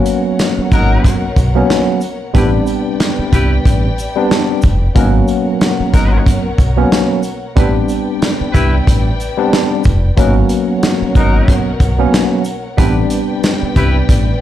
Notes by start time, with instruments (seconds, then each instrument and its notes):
Already playing: string section B2 A#4 C#5 F#5, tine electric piano F#3 A#3 B3 C#4
0.06 closed hi-hat, shaker, sleigh bells
0.39 snare, closed hi-hat, sleigh bells
0.58 muted fingered electric bass stroke
0.72 fingered electric bass G#1, horn section D#4 F#4 A#4, kick, shaker, sleigh bells
1.04 kick, closed hi-hat, sleigh bells
1.36 fingered electric bass B1, kick, shaker, sleigh bells
1.55 tine electric piano F#3 A#3 B3 C#4
1.70 snare, closed hi-hat, sleigh bells
2.01 shaker, sleigh bells
2.34 fingered electric bass A1, string section C3 B4 D5 G5, tine electric piano G3 B3 C4 D4, horn section E4 G4 B4, kick, closed hi-hat, sleigh bells
2.67 shaker, sleigh bells
3.00 snare, closed hi-hat, sleigh bells
3.19 muted fingered electric bass stroke
3.32 fingered electric bass C2, horn section E4 G4 B4, kick, closed hi-hat, shaker, sleigh bells
3.65 fingered electric bass A1, kick, closed hi-hat, sleigh bells
3.98 shaker, sleigh bells
4.16 tine electric piano G3 B3 C4 D4
4.31 snare, closed hi-hat, sleigh bells
4.62 fingered electric bass F1, kick, shaker, sleigh bells
4.95 fingered electric bass G#1, string section B2 A#4 C#5 F#5, tine electric piano F#3 A#3 B3 C#4, horn section D#4 F#4 A#4, kick, closed hi-hat, sleigh bells
5.28 shaker, sleigh bells
5.61 snare, closed hi-hat, sleigh bells
5.80 muted fingered electric bass stroke
5.93 fingered electric bass G#1, horn section D#4 F#4 A#4, kick, snare, closed hi-hat, shaker, sleigh bells
6.26 kick, closed hi-hat, sleigh bells
6.58 fingered electric bass B1, kick, shaker, sleigh bells
6.77 tine electric piano F#3 A#3 B3 C#4
6.92 snare, closed hi-hat, sleigh bells
7.23 shaker, sleigh bells
7.56 fingered electric bass A1, string section C3 B4 D5 G5, tine electric piano G3 B3 C4 D4, horn section E4 G4 B4, kick, closed hi-hat, sleigh bells
7.89 shaker, sleigh bells
8.22 snare, closed hi-hat, sleigh bells
8.41 muted fingered electric bass stroke
8.53 fingered electric bass C2, horn section E4 G4 B4, kick, closed hi-hat, shaker, sleigh bells
8.87 fingered electric bass A1, kick, closed hi-hat, sleigh bells
9.20 shaker, sleigh bells
9.38 tine electric piano G3 B3 C4 D4
9.53 snare, closed hi-hat, sleigh bells
9.84 fingered electric bass F1, kick, shaker, sleigh bells
10.17 fingered electric bass G#1, string section B2 A#4 C#5 F#5, tine electric piano F#3 A#3 B3 C#4, horn section D#4 F#4 A#4, kick, closed hi-hat, sleigh bells
10.49 closed hi-hat, shaker, sleigh bells
10.83 snare, closed hi-hat, sleigh bells
11.02 muted fingered electric bass stroke
11.15 fingered electric bass G#1, horn section D#4 F#4 A#4, kick, shaker, sleigh bells
11.48 kick, closed hi-hat, sleigh bells
11.80 fingered electric bass B1, kick, shaker, sleigh bells
11.99 tine electric piano F#3 A#3 B3 C#4
12.13 snare, closed hi-hat, sleigh bells
12.45 shaker, sleigh bells
12.77 fingered electric bass A1, string section C3 B4 D5 G5, tine electric piano G3 B3 C4 D4, horn section E4 G4 B4, kick, closed hi-hat, sleigh bells
13.10 closed hi-hat, shaker, sleigh bells
13.44 snare, closed hi-hat, sleigh bells
13.63 muted fingered electric bass stroke
13.76 fingered electric bass C2, horn section E4 G4 B4, kick, shaker, sleigh bells
14.09 fingered electric bass A1, kick, closed hi-hat, sleigh bells